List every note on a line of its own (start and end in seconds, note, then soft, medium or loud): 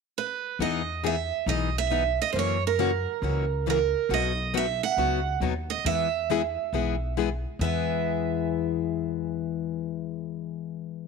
0.18 0.58 B4 medium
0.59 1.29 E2 medium
0.59 0.81 E3 medium
0.59 0.81 B3 medium
0.59 0.82 D#4 medium
0.59 0.82 G#4 medium
0.59 1.06 D#5 medium
1.04 1.15 E3 medium
1.04 1.15 B3 medium
1.04 1.15 D#4 medium
1.04 1.15 G#4 medium
1.04 1.46 E5 medium
1.46 2.17 B1 medium
1.46 1.69 E3 medium
1.46 1.69 B3 medium
1.46 1.69 D#4 medium
1.46 1.69 G#4 medium
1.46 1.76 D#5 medium
1.78 2.21 E5 medium
1.90 2.02 E3 medium
1.90 2.03 B3 medium
1.90 2.03 D#4 medium
1.90 2.03 G#4 medium
2.22 2.32 D#5 medium
2.33 3.04 F#2 medium
2.33 2.56 C#3 medium
2.33 2.57 E3 medium
2.33 2.57 A#3 medium
2.33 2.57 C#4 medium
2.33 2.36 C5 medium
2.37 2.57 F#4 medium
2.37 2.63 C#5 medium
2.67 3.69 A#4 medium
2.79 2.90 C#3 medium
2.79 2.90 E3 medium
2.79 2.90 A#3 medium
2.79 2.90 C#4 medium
2.79 2.91 F#4 medium
3.22 3.92 C#2 medium
3.22 3.44 C#3 medium
3.22 3.44 E3 medium
3.22 3.44 A#3 medium
3.22 3.45 C#4 medium
3.22 3.45 F#4 medium
3.66 3.77 C#3 medium
3.66 3.78 E3 medium
3.66 3.78 A#3 medium
3.66 3.78 C#4 medium
3.66 3.78 F#4 medium
3.66 4.13 A#4 medium
4.09 4.80 B1 medium
4.09 4.31 B2 medium
4.09 4.31 F#3 medium
4.09 4.32 B3 medium
4.09 4.32 D#4 medium
4.09 4.32 F#4 medium
4.14 4.57 D#5 medium
4.54 4.65 B2 medium
4.54 4.65 F#3 medium
4.54 4.65 B3 medium
4.54 4.66 D#4 medium
4.54 4.66 F#4 medium
4.54 4.83 E5 medium
4.83 5.38 F#5 medium
4.97 5.34 C#2 medium
4.97 5.19 B2 medium
4.97 5.19 F#3 medium
4.97 5.19 B3 medium
4.97 5.19 D#4 medium
4.97 5.20 F#4 medium
5.40 5.78 D#2 medium
5.40 5.53 B2 medium
5.40 5.53 F#3 medium
5.40 5.53 B3 medium
5.40 5.53 D#4 medium
5.40 5.53 F#4 medium
5.70 5.85 D#5 medium
5.85 6.55 E2 medium
5.85 6.07 E3 medium
5.85 6.07 G#3 medium
5.85 6.07 B3 medium
5.85 6.07 E4 medium
5.85 6.07 G#4 medium
5.85 7.13 E5 loud
6.30 6.41 E3 medium
6.30 6.41 G#3 medium
6.30 6.41 B3 medium
6.30 6.41 E4 medium
6.30 6.41 G#4 medium
6.73 7.43 B1 medium
6.73 6.94 E3 medium
6.73 6.95 G#3 medium
6.73 6.95 B3 medium
6.73 6.95 E4 medium
6.73 6.95 G#4 medium
7.17 7.28 E3 medium
7.17 7.28 G#3 medium
7.17 7.28 B3 medium
7.17 7.28 E4 medium
7.17 7.29 G#4 medium
7.59 11.08 E2 medium
7.59 11.08 E3 medium
7.59 11.08 G#3 medium
7.59 11.08 B3 medium
7.59 11.08 E5 medium
7.64 11.08 E4 medium
7.64 11.08 G#4 medium